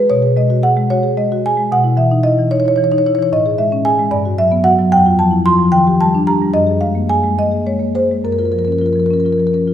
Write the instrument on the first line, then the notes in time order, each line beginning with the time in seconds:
marimba
0.10 B2 C#5
0.22 G#4
0.37 G#3 D#5
0.50 F#4
0.63 G#4 F#5
0.77 G#3
0.90 F#4 C#5
1.03 G#4
1.17 G#3 D#5
1.32 F#4
1.46 G#4 G#5
1.57 G#3
1.72 B2 F#5
1.84 E4
1.97 E3 E5
2.11 D#4
2.23 E4 D#5
2.39 E3
2.51 D#4 C#5
2.60 C#5
2.65 E4 C#5
2.76 E3 C#5
2.84 C#5
2.92 D#4 C#5
2.98 C#5
3.06 E4 C#5
3.15 E3 C#5
3.22 C#5
3.33 A2 D#5
3.46 G#4
3.58 G#3 E5
3.72 C#4
3.85 G#4 G#5
3.99 G#3
4.11 G2 D5
4.25 F#4
4.38 F#3 E5
4.52 B3
4.64 F#4 F#5
4.79 F#3
4.92 F2 G5
5.06 F4
5.19 F3 A5
5.31 E4
5.46 F4 C6
5.59 F3
5.72 D#3 G5
5.87 G4
6.01 G3 A5
6.15 D4
6.27 G4 A#5
6.42 G3
6.53 F#2 D#5
6.67 G#4
6.81 G#3 F5
6.95 A#3
7.09 G#4 G#5
7.24 G#3
7.38 A#3 D#5
7.51 G#4
7.67 G#3 C#5
7.79 A#3
7.95 G#4 C5
8.11 G#3
8.25 F#2 A#4
8.32 A#4
8.38 F4 A#4
8.45 A#4
8.52 F3 A#4
8.59 A#4
8.65 C#4 A#4
8.72 A#4
8.79 F4 A#4
8.86 A#4
8.93 F3 A#4
8.99 A#4
9.06 A#4
9.10 C#4 A#4
9.20 A#4
9.25 F4 A#4
9.32 A#4
9.38 F3 A#4
9.47 A#4
9.53 C#4 A#4
9.67 F4